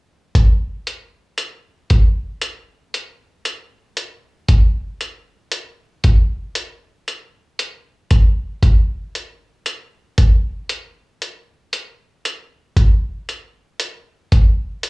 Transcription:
0.35 kick, closed hi-hat
0.87 closed hi-hat
1.38 closed hi-hat
1.90 kick, closed hi-hat
2.42 closed hi-hat
2.94 closed hi-hat
3.45 closed hi-hat
3.97 closed hi-hat
4.49 kick, closed hi-hat
5.01 closed hi-hat
5.52 closed hi-hat
6.04 kick, closed hi-hat
6.55 closed hi-hat
7.08 closed hi-hat
7.59 closed hi-hat
8.11 kick, closed hi-hat
8.63 kick, closed hi-hat
9.15 closed hi-hat
9.66 closed hi-hat
10.18 kick, closed hi-hat
10.69 closed hi-hat
11.22 closed hi-hat
11.73 closed hi-hat
12.25 closed hi-hat
12.77 kick, closed hi-hat
13.29 closed hi-hat
13.80 closed hi-hat
14.32 kick, closed hi-hat
14.83 closed hi-hat

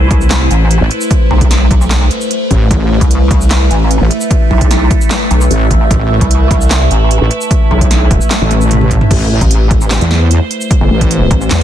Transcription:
Already playing: A3 E4 B4 C5
0.11 C2, kick, closed hi-hat
0.21 shaker
0.31 snare, clap, closed hi-hat
0.51 A1, closed hi-hat
0.71 closed hi-hat
0.81 A1
0.91 closed hi-hat
1.01 shaker
1.11 kick, closed hi-hat
1.31 B1
1.41 kick, closed hi-hat
1.51 snare, closed hi-hat
1.71 B1, kick, closed hi-hat
1.81 shaker
1.91 snare, clap, closed hi-hat
2.11 closed hi-hat
2.21 shaker
2.31 closed hi-hat
2.51 A1, kick, closed hi-hat
2.71 A1 E5, kick, closed hi-hat
3.01 C2, kick, closed hi-hat
3.11 closed hi-hat
3.31 C2, kick, closed hi-hat
3.41 shaker
3.51 snare, clap, closed hi-hat
3.71 A1, closed hi-hat
3.91 closed hi-hat
4.01 A1
4.11 closed hi-hat
4.21 shaker
4.31 kick, closed hi-hat
4.51 B1
4.61 kick, closed hi-hat
4.71 snare, closed hi-hat
4.91 kick, closed hi-hat
5.01 shaker
5.11 snare, clap, closed hi-hat
5.31 B1, closed hi-hat
5.41 shaker
5.51 A1, closed hi-hat
5.71 A1, kick, closed hi-hat
5.91 A1, kick, closed hi-hat
6.21 C2, kick, closed hi-hat
6.31 closed hi-hat
6.51 C2, kick, closed hi-hat
6.61 shaker
6.71 snare, clap, closed hi-hat
6.91 A1, closed hi-hat
7.11 closed hi-hat
7.21 A1
7.31 closed hi-hat
7.41 shaker
7.51 kick, closed hi-hat
7.71 B1
7.81 kick, closed hi-hat
7.91 snare, closed hi-hat
8.11 E1, kick, closed hi-hat
8.21 shaker
8.31 snare, clap, closed hi-hat
8.41 A1
8.51 closed hi-hat, high tom
8.61 shaker
8.71 closed hi-hat, mid tom
8.81 mid tom
8.91 kick, closed hi-hat
9.01 mid tom
9.11 A1 A3 E4 B4 C5, kick, closed hi-hat, crash
9.41 A1, kick, closed hi-hat
9.51 closed hi-hat
9.71 kick, closed hi-hat
9.81 shaker
9.91 snare, clap, closed hi-hat
10.01 E2, closed hi-hat
10.11 snare
10.31 closed hi-hat
10.51 closed hi-hat
10.61 shaker
10.71 kick, closed hi-hat
10.81 G1
10.91 A1
11.01 kick, closed hi-hat
11.11 closed hi-hat
11.31 A1, kick, closed hi-hat
11.41 shaker
11.51 E2, snare, clap, closed hi-hat

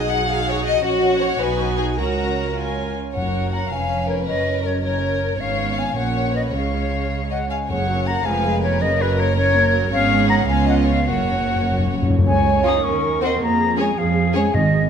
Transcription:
Already playing: B1 D#4 F#4 G#4 F#5
0.11 F#5
0.29 F5
0.48 C#5
0.65 D#5
0.84 A#1 C#4 F#4 F#5
1.20 C#5
1.39 B1 D#4 F#4 B4 G#5
1.77 G#4
1.97 C#2 C#4 F#4 A#4 A#5
2.57 C#4 F4 G#5
3.14 F#1 F#2 C#4 F#4 A#4 C#5 F#5
3.53 F#5 A#5
3.71 F1 F2 C#4 B4 F5 G#5
4.09 A#4 C#5
4.27 F#1 F#2 C#4 A#4 B4 D#5
4.64 A#4 C#5
4.83 C#4 A#4 C#5
5.39 G#1 G#2 B3 C#4 C#5 F5
5.78 F5 G#5
5.95 A#1 A#2 A#3 C#4 C#5 F#5
6.34 B4 D#5
6.53 C#2 C#3 G#3 C#4 C#5 F5
7.31 D#5 F#5
7.50 F5 G#5
7.69 F#1 F#2 C#3 A#3 C#5 F#5
7.88 F#3
8.06 A#3 F#5 A#5
8.24 F1 F2 F3 G#3 B4 F5 G#5
8.44 G#3
8.62 B3 A#4 C#5
8.81 F#1 F#2 C#3 A#3 A#4 B4 D#5
8.99 F#3 G#4 B4
9.18 A#3 A#4 C#5
9.36 C#4 A#4 C#5
9.56 A#3
9.74 F#3
9.91 G#1 G#2 B3 C#4 G#4 C#5 F5
10.29 F#5 A#5
10.49 C#2 C#3 B3 C#4 F4 F5 G#5
10.69 D#5 F#5
10.87 C#5 F5
11.07 F#1 F#2 A#3 C#4 F#4 C#5 F#5
11.24 F#2
11.31 F#2
11.40 F#2
11.47 F#2
11.55 F#2
11.62 F#2
11.71 F#2
11.79 F#2
11.86 F#2
11.94 F#2
12.02 F#2
12.10 F#2
12.18 F#2
12.26 C#2 C#3 G#3 C#5 G#5
12.65 C#4 D#4 F4 G#4 D#6
12.84 D#2 C#4 A#4 C#6
13.22 C4 F#4 D#5 C6
13.41 F2 A#3 G#4 A#5
13.77 G#3 C#4 G#4 C#5 G#5
13.98 F2 F3 F5
14.34 G#3 C#4 G#4 C#5 G#5
14.53 G#1 G#2 D#3 D#5

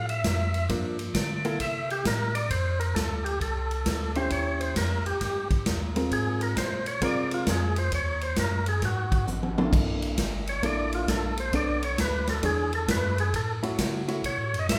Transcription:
Already playing: A2
0.09 E5, ride
0.24 F2, kick, snare, hi-hat pedal, ride
0.54 ride
0.69 G2 F3 A#3 D4, kick, ride
0.99 ride
1.14 D3, kick, snare, hi-hat pedal, ride
1.45 A#3 E4 A4, ride
1.60 C3 E5, kick, ride
1.90 G4, ride
2.05 A2 A#4, kick, snare, hi-hat pedal, ride
2.35 D5, ride
2.50 F2 C5, kick, ride
2.80 A#4, ride
2.95 D2 A4, kick, snare, hi-hat pedal, ride
3.24 G4, ride
3.40 C2 A4, kick, ride
3.71 ride
3.85 D2, kick, snare, hi-hat pedal, ride
4.15 C#4 E4 G4 C5, ride
4.30 D#2 C#5, kick, ride
4.61 C5, ride
4.75 F2 A#4, kick, snare, hi-hat pedal, ride
5.04 F2 G4, ride
5.21 G2, kick, snare, ride
5.50 kick, ride
5.66 D#2, kick, snare, hi-hat pedal, ride
5.96 G#3 C4 F4 A#4, ride
6.11 G#2 G#4, kick, ride
6.41 A#4, ride
6.56 A#2 C5, kick, snare, hi-hat pedal, ride
6.86 C#5, ride
7.02 C3 G#3 C4 F4 A#4 D5, kick, ride
7.31 F4, ride
7.47 F2 G#4, kick, snare, hi-hat pedal, ride
7.76 C5, ride
7.92 D#2 C#5, kick, ride
8.21 C5, ride
8.36 F#2 A#4, kick, snare, hi-hat pedal, ride
8.66 G#4, ride
8.82 G#2 F#4, kick, snare, ride
9.12 kick, ride
9.26 G#1, hi-hat pedal, high tom
9.43 high tom
9.58 A#3 D4 E4 A4, high tom
9.72 A#1, kick, crash
10.02 ride
10.18 G1, kick, snare, hi-hat pedal, ride
10.47 C#5, ride
10.62 A1 A#3 D4 E4 A4 D5, kick, ride
10.92 F4, ride
11.08 A#1 A4, kick, snare, hi-hat pedal, ride
11.37 C5, ride
11.53 B1 B3 D4 A4 C#5 D5, kick, ride
11.82 C#5, ride
11.98 D2 B4, kick, snare, hi-hat pedal, ride
12.27 A4, snare, ride
12.43 E2 E3 D4 G#4 C#5, kick, ride
12.73 A4, ride
12.88 F#2 B4, kick, snare, hi-hat pedal, ride
13.18 G#4, ride
13.33 A2 A4, kick, ride
13.63 A2 A3 E4 F#4 C#5, ride
13.78 C#3, kick, snare, hi-hat pedal, ride
14.08 A3 E4 F#4 C#5, ride
14.24 B2 C#5, kick, ride
14.38 A2
14.54 F#2, ride
14.59 D#5
14.69 A2 E5, kick, snare, hi-hat pedal, ride

